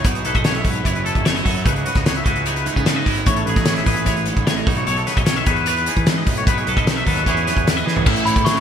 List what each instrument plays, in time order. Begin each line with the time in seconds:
0.04 picked electric bass B1, clean electric guitar B2 D#4 B4, kick, closed hi-hat
0.15 clean electric guitar G#4, closed hi-hat
0.25 picked electric bass B1, clean electric guitar A4 B4, closed hi-hat
0.35 picked electric bass B1, clean electric guitar D#5, kick, closed hi-hat
0.43 clean electric guitar A2 C#5, snare, closed hi-hat
0.54 clean electric guitar E5, snare, closed hi-hat
0.64 picked electric bass B1, clean electric guitar G#2 B4, kick, open hi-hat
0.75 closed hi-hat
0.84 picked electric bass F#1, clean electric guitar F#2 E4 C#5, kick, closed hi-hat
0.95 clean electric guitar B4, closed hi-hat
1.05 clean electric guitar A4, closed hi-hat
1.15 picked electric bass F#1, kick, closed hi-hat
1.24 clean electric guitar E4 C#5, snare, closed hi-hat
1.36 clean electric guitar D#5, snare, closed hi-hat
1.44 picked electric bass F#2, clean electric guitar F#3 A4, kick, open hi-hat
1.56 clean electric guitar C#5, closed hi-hat
1.64 picked electric bass C#2, clean electric guitar C#3 D#4 B4, kick, closed hi-hat
1.76 clean electric guitar G#4, closed hi-hat
1.85 clean electric guitar F#4 B4, closed hi-hat
1.95 picked electric bass C#2, clean electric guitar D#5, kick, snare, closed hi-hat
2.05 clean electric guitar D#4 C#5, snare, closed hi-hat
2.16 clean electric guitar E5, closed hi-hat
2.24 picked electric bass C#2, clean electric guitar E3 F#4 B4, kick, closed hi-hat
2.36 closed hi-hat
2.46 clean electric guitar D#4 C#5, closed hi-hat
2.56 clean electric guitar B4, closed hi-hat
2.66 clean electric guitar G#2 A3 G#4, closed hi-hat
2.76 picked electric bass C#3, clean electric guitar B3, kick, closed hi-hat
2.86 clean electric guitar D#4 B4, snare, closed hi-hat
2.96 clean electric guitar D#5
3.06 picked electric bass G#1, clean electric guitar E4, kick, open hi-hat
3.16 clean electric guitar C#5, closed hi-hat
3.26 picked electric bass A1, clean electric guitar A2 E4 C#5, kick, closed hi-hat
3.36 clean electric guitar A4, closed hi-hat
3.46 picked electric bass A1, clean electric guitar G#4 B4, closed hi-hat
3.56 picked electric bass A1, clean electric guitar D#5, kick, snare, closed hi-hat
3.65 clean electric guitar E4 C#5, snare, closed hi-hat
3.76 clean electric guitar E5, snare, closed hi-hat
3.86 picked electric bass A1, clean electric guitar E3 G#4 B4, kick, open hi-hat
3.96 closed hi-hat
4.06 picked electric bass A1, clean electric guitar E4 C#5, kick, closed hi-hat
4.16 clean electric guitar B4, closed hi-hat
4.25 clean electric guitar G#2 A4, closed hi-hat
4.36 picked electric bass A1, kick, closed hi-hat
4.47 clean electric guitar A2 C#5, snare, closed hi-hat
4.57 clean electric guitar D#5, closed hi-hat
4.66 picked electric bass B1, clean electric guitar B2 D#4, kick, open hi-hat
4.76 clean electric guitar C#5, closed hi-hat
4.87 picked electric bass B1, clean electric guitar A4 C#5, closed hi-hat
4.96 clean electric guitar A4, closed hi-hat
5.07 clean electric guitar C#3 B4, snare, closed hi-hat
5.17 picked electric bass B1, clean electric guitar D#5, kick, closed hi-hat
5.26 clean electric guitar D#3 C#5, snare, closed hi-hat
5.36 clean electric guitar E5, closed hi-hat
5.46 picked electric bass E2, clean electric guitar E2 D#4 B4, kick, closed hi-hat
5.56 closed hi-hat
5.66 clean electric guitar B4 C#5, closed hi-hat
5.77 clean electric guitar B4, closed hi-hat
5.86 clean electric guitar D#4 G#4, closed hi-hat
5.96 picked electric bass E3, kick, closed hi-hat
6.06 clean electric guitar G#2 B4, snare, closed hi-hat
6.18 clean electric guitar D#5
6.26 picked electric bass B1, clean electric guitar A2, kick, open hi-hat
6.37 clean electric guitar C#5, closed hi-hat
6.47 picked electric bass B1, clean electric guitar B2 D#4 B4, kick, closed hi-hat
6.57 clean electric guitar G#4, closed hi-hat
6.67 picked electric bass B1, clean electric guitar A4 B4, closed hi-hat
6.77 picked electric bass B1, clean electric guitar D#5, kick, closed hi-hat
6.87 clean electric guitar D#4 C#5, snare, closed hi-hat
6.96 clean electric guitar E5, closed hi-hat
7.07 picked electric bass D#2, clean electric guitar F#3 A4 B4, kick, open hi-hat
7.17 closed hi-hat
7.26 picked electric bass E2, clean electric guitar E2 E3 C#4 E4 G#4 C#5, kick, closed hi-hat
7.37 clean electric guitar B4, closed hi-hat
7.47 clean electric guitar G#4 B4, snare, closed hi-hat
7.57 picked electric bass E2, kick, closed hi-hat
7.67 clean electric guitar E4 B4, snare, closed hi-hat
7.77 clean electric guitar D#5, closed hi-hat
7.85 clean electric guitar E3 G#4, picked electric bass E3, snare
7.96 clean electric guitar C#5, floor tom
8.04 clean electric guitar A2 E5, picked electric bass A2, overdriven electric guitar E3 A3 C#4 E4, kick, crash
8.16 closed hi-hat
8.25 clean electric guitar E4 C#5, glockenspiel B5, closed hi-hat
8.36 clean electric guitar A4, kick, closed hi-hat
8.44 clean electric guitar E3 G#4, overdriven electric guitar E3 A3 C#4 E4, glockenspiel C#6, snare, closed hi-hat
8.57 clean electric guitar A4, closed hi-hat